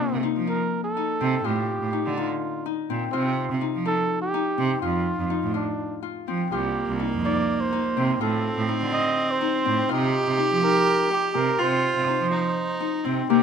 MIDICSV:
0, 0, Header, 1, 5, 480
1, 0, Start_track
1, 0, Tempo, 483092
1, 1442, Time_signature, 7, 3, 24, 8
1, 11752, Tempo, 493827
1, 13308, End_track
2, 0, Start_track
2, 0, Title_t, "Trumpet"
2, 0, Program_c, 0, 56
2, 0, Note_on_c, 0, 63, 90
2, 208, Note_off_c, 0, 63, 0
2, 476, Note_on_c, 0, 70, 77
2, 814, Note_off_c, 0, 70, 0
2, 836, Note_on_c, 0, 69, 81
2, 1449, Note_on_c, 0, 67, 81
2, 1464, Note_off_c, 0, 69, 0
2, 2171, Note_on_c, 0, 65, 66
2, 2186, Note_off_c, 0, 67, 0
2, 2642, Note_off_c, 0, 65, 0
2, 3096, Note_on_c, 0, 60, 81
2, 3550, Note_off_c, 0, 60, 0
2, 3843, Note_on_c, 0, 69, 100
2, 4173, Note_off_c, 0, 69, 0
2, 4190, Note_on_c, 0, 67, 90
2, 4750, Note_off_c, 0, 67, 0
2, 4784, Note_on_c, 0, 65, 81
2, 5470, Note_off_c, 0, 65, 0
2, 5520, Note_on_c, 0, 62, 62
2, 5967, Note_off_c, 0, 62, 0
2, 6479, Note_on_c, 0, 67, 89
2, 6930, Note_off_c, 0, 67, 0
2, 7204, Note_on_c, 0, 74, 89
2, 7559, Note_on_c, 0, 72, 78
2, 7574, Note_off_c, 0, 74, 0
2, 8159, Note_off_c, 0, 72, 0
2, 8168, Note_on_c, 0, 69, 69
2, 8610, Note_off_c, 0, 69, 0
2, 8873, Note_on_c, 0, 75, 89
2, 9250, Note_on_c, 0, 72, 84
2, 9264, Note_off_c, 0, 75, 0
2, 9845, Note_on_c, 0, 63, 71
2, 9860, Note_off_c, 0, 72, 0
2, 10319, Note_off_c, 0, 63, 0
2, 10574, Note_on_c, 0, 70, 81
2, 11009, Note_off_c, 0, 70, 0
2, 11046, Note_on_c, 0, 67, 74
2, 11277, Note_on_c, 0, 70, 82
2, 11292, Note_off_c, 0, 67, 0
2, 11534, Note_on_c, 0, 72, 80
2, 11549, Note_off_c, 0, 70, 0
2, 12960, Note_off_c, 0, 72, 0
2, 13180, Note_on_c, 0, 67, 89
2, 13308, Note_off_c, 0, 67, 0
2, 13308, End_track
3, 0, Start_track
3, 0, Title_t, "Harp"
3, 0, Program_c, 1, 46
3, 0, Note_on_c, 1, 58, 68
3, 0, Note_on_c, 1, 60, 66
3, 0, Note_on_c, 1, 62, 65
3, 0, Note_on_c, 1, 65, 70
3, 229, Note_on_c, 1, 63, 67
3, 288, Note_off_c, 1, 62, 0
3, 466, Note_off_c, 1, 63, 0
3, 470, Note_on_c, 1, 63, 55
3, 957, Note_off_c, 1, 63, 0
3, 961, Note_on_c, 1, 63, 64
3, 1195, Note_off_c, 1, 60, 0
3, 1199, Note_on_c, 1, 60, 62
3, 1430, Note_off_c, 1, 65, 0
3, 1434, Note_on_c, 1, 65, 70
3, 1912, Note_off_c, 1, 63, 0
3, 1916, Note_on_c, 1, 63, 67
3, 2155, Note_off_c, 1, 63, 0
3, 2159, Note_on_c, 1, 63, 65
3, 2636, Note_off_c, 1, 63, 0
3, 2640, Note_on_c, 1, 63, 71
3, 2685, Note_off_c, 1, 58, 0
3, 2875, Note_off_c, 1, 60, 0
3, 2879, Note_on_c, 1, 60, 61
3, 3106, Note_off_c, 1, 65, 0
3, 3110, Note_on_c, 1, 65, 74
3, 3585, Note_off_c, 1, 63, 0
3, 3589, Note_on_c, 1, 63, 66
3, 3826, Note_off_c, 1, 63, 0
3, 3830, Note_on_c, 1, 63, 70
3, 4307, Note_off_c, 1, 63, 0
3, 4311, Note_on_c, 1, 63, 79
3, 4544, Note_off_c, 1, 60, 0
3, 4548, Note_on_c, 1, 60, 58
3, 4786, Note_off_c, 1, 65, 0
3, 4790, Note_on_c, 1, 65, 72
3, 5263, Note_off_c, 1, 63, 0
3, 5267, Note_on_c, 1, 63, 66
3, 5500, Note_off_c, 1, 65, 0
3, 5504, Note_on_c, 1, 65, 59
3, 5983, Note_off_c, 1, 65, 0
3, 5987, Note_on_c, 1, 65, 65
3, 6233, Note_off_c, 1, 60, 0
3, 6237, Note_on_c, 1, 60, 53
3, 6475, Note_off_c, 1, 65, 0
3, 6479, Note_on_c, 1, 65, 68
3, 6947, Note_off_c, 1, 63, 0
3, 6951, Note_on_c, 1, 63, 65
3, 7200, Note_off_c, 1, 63, 0
3, 7204, Note_on_c, 1, 63, 61
3, 7672, Note_off_c, 1, 63, 0
3, 7676, Note_on_c, 1, 63, 71
3, 7913, Note_off_c, 1, 60, 0
3, 7917, Note_on_c, 1, 60, 62
3, 8151, Note_off_c, 1, 65, 0
3, 8155, Note_on_c, 1, 65, 84
3, 8627, Note_off_c, 1, 63, 0
3, 8631, Note_on_c, 1, 63, 69
3, 8862, Note_off_c, 1, 63, 0
3, 8866, Note_on_c, 1, 63, 62
3, 9345, Note_off_c, 1, 63, 0
3, 9349, Note_on_c, 1, 63, 77
3, 9588, Note_off_c, 1, 60, 0
3, 9592, Note_on_c, 1, 60, 65
3, 9823, Note_off_c, 1, 65, 0
3, 9827, Note_on_c, 1, 65, 83
3, 10304, Note_off_c, 1, 63, 0
3, 10308, Note_on_c, 1, 63, 68
3, 10548, Note_off_c, 1, 63, 0
3, 10552, Note_on_c, 1, 63, 63
3, 11029, Note_off_c, 1, 63, 0
3, 11033, Note_on_c, 1, 63, 67
3, 11269, Note_off_c, 1, 60, 0
3, 11273, Note_on_c, 1, 60, 64
3, 11511, Note_off_c, 1, 65, 0
3, 11515, Note_on_c, 1, 65, 82
3, 11987, Note_off_c, 1, 63, 0
3, 11991, Note_on_c, 1, 63, 69
3, 12219, Note_off_c, 1, 63, 0
3, 12223, Note_on_c, 1, 63, 60
3, 12697, Note_off_c, 1, 63, 0
3, 12701, Note_on_c, 1, 63, 67
3, 12938, Note_off_c, 1, 60, 0
3, 12942, Note_on_c, 1, 60, 61
3, 13182, Note_on_c, 1, 58, 78
3, 13308, Note_off_c, 1, 58, 0
3, 13308, Note_off_c, 1, 60, 0
3, 13308, Note_off_c, 1, 63, 0
3, 13308, Note_off_c, 1, 65, 0
3, 13308, End_track
4, 0, Start_track
4, 0, Title_t, "Viola"
4, 0, Program_c, 2, 41
4, 6471, Note_on_c, 2, 58, 85
4, 8165, Note_on_c, 2, 60, 93
4, 8180, Note_off_c, 2, 58, 0
4, 9851, Note_on_c, 2, 67, 112
4, 9866, Note_off_c, 2, 60, 0
4, 11511, Note_on_c, 2, 65, 91
4, 11526, Note_off_c, 2, 67, 0
4, 12217, Note_off_c, 2, 65, 0
4, 12223, Note_on_c, 2, 63, 80
4, 12934, Note_on_c, 2, 60, 65
4, 12948, Note_off_c, 2, 63, 0
4, 13182, Note_off_c, 2, 60, 0
4, 13188, Note_on_c, 2, 60, 81
4, 13308, Note_off_c, 2, 60, 0
4, 13308, End_track
5, 0, Start_track
5, 0, Title_t, "Cello"
5, 0, Program_c, 3, 42
5, 116, Note_on_c, 3, 48, 76
5, 219, Note_off_c, 3, 48, 0
5, 356, Note_on_c, 3, 53, 68
5, 564, Note_off_c, 3, 53, 0
5, 1200, Note_on_c, 3, 48, 87
5, 1406, Note_off_c, 3, 48, 0
5, 1434, Note_on_c, 3, 45, 79
5, 1744, Note_off_c, 3, 45, 0
5, 1804, Note_on_c, 3, 45, 76
5, 1905, Note_off_c, 3, 45, 0
5, 2044, Note_on_c, 3, 50, 78
5, 2246, Note_off_c, 3, 50, 0
5, 2885, Note_on_c, 3, 46, 73
5, 3085, Note_off_c, 3, 46, 0
5, 3119, Note_on_c, 3, 48, 88
5, 3424, Note_off_c, 3, 48, 0
5, 3488, Note_on_c, 3, 48, 79
5, 3584, Note_off_c, 3, 48, 0
5, 3722, Note_on_c, 3, 53, 71
5, 3923, Note_off_c, 3, 53, 0
5, 4554, Note_on_c, 3, 48, 89
5, 4758, Note_off_c, 3, 48, 0
5, 4798, Note_on_c, 3, 41, 88
5, 5104, Note_off_c, 3, 41, 0
5, 5152, Note_on_c, 3, 41, 74
5, 5255, Note_off_c, 3, 41, 0
5, 5393, Note_on_c, 3, 45, 66
5, 5600, Note_off_c, 3, 45, 0
5, 6237, Note_on_c, 3, 53, 70
5, 6446, Note_off_c, 3, 53, 0
5, 6476, Note_on_c, 3, 36, 77
5, 6789, Note_off_c, 3, 36, 0
5, 6843, Note_on_c, 3, 36, 77
5, 6947, Note_off_c, 3, 36, 0
5, 7084, Note_on_c, 3, 41, 73
5, 7292, Note_off_c, 3, 41, 0
5, 7923, Note_on_c, 3, 48, 84
5, 8128, Note_off_c, 3, 48, 0
5, 8153, Note_on_c, 3, 45, 84
5, 8464, Note_off_c, 3, 45, 0
5, 8514, Note_on_c, 3, 45, 81
5, 8620, Note_off_c, 3, 45, 0
5, 8754, Note_on_c, 3, 50, 72
5, 8962, Note_off_c, 3, 50, 0
5, 9602, Note_on_c, 3, 45, 83
5, 9806, Note_off_c, 3, 45, 0
5, 9840, Note_on_c, 3, 48, 86
5, 10145, Note_off_c, 3, 48, 0
5, 10198, Note_on_c, 3, 48, 74
5, 10299, Note_off_c, 3, 48, 0
5, 10439, Note_on_c, 3, 53, 71
5, 10642, Note_off_c, 3, 53, 0
5, 11275, Note_on_c, 3, 48, 81
5, 11479, Note_off_c, 3, 48, 0
5, 11521, Note_on_c, 3, 48, 81
5, 11825, Note_off_c, 3, 48, 0
5, 11878, Note_on_c, 3, 48, 77
5, 11976, Note_off_c, 3, 48, 0
5, 12107, Note_on_c, 3, 53, 74
5, 12311, Note_off_c, 3, 53, 0
5, 12943, Note_on_c, 3, 48, 77
5, 13153, Note_off_c, 3, 48, 0
5, 13179, Note_on_c, 3, 48, 72
5, 13308, Note_off_c, 3, 48, 0
5, 13308, End_track
0, 0, End_of_file